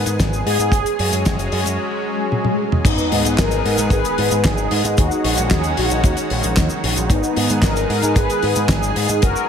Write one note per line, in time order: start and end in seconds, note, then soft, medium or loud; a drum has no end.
0.00 0.69 D#3 medium
0.00 0.69 G#3 medium
0.00 0.71 B3 medium
0.00 2.81 G#4 loud
0.00 0.16 A#4 loud
0.06 0.17 G#2 medium
0.06 closed hi-hat medium
0.06 cabasa medium
0.20 0.41 G#1 medium
0.20 kick medium
0.20 snare loud
0.20 closed hi-hat medium
0.20 cabasa medium
0.33 cabasa soft
0.46 0.57 G#2 loud
0.46 1.75 G#4 loud
0.46 open hi-hat loud
0.59 0.70 G#2 medium
0.59 closed hi-hat medium
0.59 cabasa medium
0.72 0.83 F#1 loud
0.72 2.83 F#3 medium
0.72 2.83 G#3 medium
0.72 2.83 C#4 medium
0.72 kick loud
0.72 closed hi-hat medium
0.72 cabasa medium
0.86 closed hi-hat medium
0.86 cabasa soft
0.99 1.10 F#2 medium
0.99 open hi-hat loud
1.13 1.23 F#2 loud
1.13 closed hi-hat medium
1.13 cabasa medium
1.25 1.48 F#1 loud
1.25 kick loud
1.25 snare loud
1.25 closed hi-hat medium
1.25 cabasa medium
1.39 closed hi-hat medium
1.39 cabasa soft
1.52 1.63 F#2 loud
1.52 open hi-hat loud
1.65 1.76 F#2 medium
1.65 closed hi-hat medium
1.65 cabasa medium
1.79 swell medium
2.32 high tom medium
2.45 high tom medium
2.72 mid tom medium
2.85 2.96 G#1 loud
2.85 4.96 D#3 medium
2.85 7.06 G#3 medium
2.85 4.96 B3 medium
2.85 3.35 B3 medium
2.85 3.38 D#4 loud
2.85 4.96 G#4 loud
2.85 kick loud
2.85 closed hi-hat medium
2.85 crash loud
2.85 sub drop medium
2.85 cabasa medium
2.98 cabasa soft
3.12 3.23 G#2 medium
3.12 open hi-hat loud
3.25 3.36 G#2 loud
3.25 closed hi-hat medium
3.25 cabasa medium
3.38 3.60 G#1 loud
3.38 3.88 D#4 medium
3.38 3.93 A#4 loud
3.38 kick loud
3.38 snare loud
3.38 clap loud
3.38 closed hi-hat medium
3.38 cabasa medium
3.51 closed hi-hat medium
3.51 cabasa soft
3.65 3.76 G#2 loud
3.65 open hi-hat loud
3.78 3.89 G#2 medium
3.78 closed hi-hat medium
3.78 cabasa medium
3.90 4.02 G#1 loud
3.90 4.41 G#4 medium
3.90 4.46 B4 loud
3.90 kick loud
3.90 closed hi-hat medium
3.90 cabasa medium
4.05 closed hi-hat medium
4.05 cabasa medium
4.18 4.29 G#2 medium
4.18 open hi-hat loud
4.31 4.42 G#2 medium
4.31 closed hi-hat medium
4.31 cabasa medium
4.44 4.66 G#1 medium
4.44 4.94 D#4 medium
4.44 4.99 G#4 loud
4.44 kick loud
4.44 snare loud
4.44 clap loud
4.44 closed hi-hat medium
4.44 cabasa medium
4.58 cabasa soft
4.71 4.82 G#2 loud
4.71 open hi-hat loud
4.85 4.95 G#2 medium
4.85 closed hi-hat medium
4.85 cabasa medium
4.97 5.09 D#2 loud
4.97 9.18 D#3 medium
4.97 7.08 C#4 medium
4.97 5.48 D#4 medium
4.97 7.08 F#4 medium
4.97 5.53 F#4 loud
4.97 kick loud
4.97 closed hi-hat medium
4.97 cabasa medium
5.11 cabasa medium
5.24 5.35 A#1 loud
5.24 open hi-hat loud
5.37 5.48 A#1 loud
5.37 closed hi-hat medium
5.37 cabasa medium
5.51 5.72 D#2 loud
5.51 5.76 D#4 medium
5.51 5.78 G#4 loud
5.51 kick loud
5.51 snare loud
5.51 clap loud
5.51 closed hi-hat medium
5.51 cabasa medium
5.64 closed hi-hat medium
5.64 cabasa soft
5.77 5.88 A#1 loud
5.77 6.27 D#4 medium
5.77 6.27 F#4 medium
5.77 open hi-hat loud
5.90 6.01 A#1 medium
5.90 closed hi-hat medium
5.90 cabasa medium
6.04 6.15 D#2 loud
6.04 kick loud
6.04 closed hi-hat medium
6.04 cabasa medium
6.17 closed hi-hat medium
6.17 cabasa soft
6.30 6.41 A#1 loud
6.30 open hi-hat loud
6.43 6.55 A#1 loud
6.43 closed hi-hat medium
6.43 cabasa medium
6.57 6.68 D#2 medium
6.57 kick loud
6.57 snare loud
6.57 clap loud
6.57 closed hi-hat medium
6.57 cabasa medium
6.70 cabasa soft
6.84 6.94 A#1 medium
6.84 open hi-hat loud
6.96 7.08 A#1 loud
6.96 closed hi-hat medium
6.96 cabasa medium
7.10 7.21 G#1 loud
7.10 9.20 G#3 medium
7.10 9.20 B3 medium
7.10 7.60 B3 medium
7.10 7.59 D#4 loud
7.10 9.49 G#4 medium
7.10 kick loud
7.10 closed hi-hat medium
7.10 cabasa medium
7.23 cabasa soft
7.36 7.47 G#2 medium
7.36 open hi-hat loud
7.49 7.61 G#2 loud
7.49 closed hi-hat medium
7.49 cabasa medium
7.62 7.84 G#1 loud
7.62 8.13 D#4 medium
7.62 8.18 A#4 loud
7.62 kick loud
7.62 snare loud
7.62 clap loud
7.62 closed hi-hat medium
7.62 cabasa medium
7.76 closed hi-hat medium
7.76 cabasa soft
7.90 8.00 G#2 loud
7.90 open hi-hat medium
8.02 8.14 G#2 medium
8.02 closed hi-hat medium
8.02 cabasa medium
8.16 8.27 G#1 loud
8.16 8.66 G#4 medium
8.16 8.66 B4 loud
8.16 kick loud
8.16 closed hi-hat medium
8.16 cabasa medium
8.30 closed hi-hat medium
8.30 cabasa soft
8.42 8.54 G#2 medium
8.42 open hi-hat loud
8.55 8.67 G#2 medium
8.55 closed hi-hat medium
8.55 cabasa medium
8.69 8.90 G#1 medium
8.69 9.19 D#4 medium
8.69 9.24 G#4 loud
8.69 kick loud
8.69 snare loud
8.69 clap loud
8.69 closed hi-hat medium
8.69 cabasa medium
8.83 cabasa medium
8.96 9.07 G#2 loud
8.96 open hi-hat loud
9.09 9.20 G#2 medium
9.09 closed hi-hat medium
9.09 cabasa medium
9.22 9.33 F#1 loud
9.22 9.49 F#3 medium
9.22 9.49 G#3 medium
9.22 9.49 C#4 medium
9.22 9.49 F#4 medium
9.22 9.49 A#4 loud
9.22 kick loud
9.22 closed hi-hat medium
9.22 cabasa medium
9.36 cabasa soft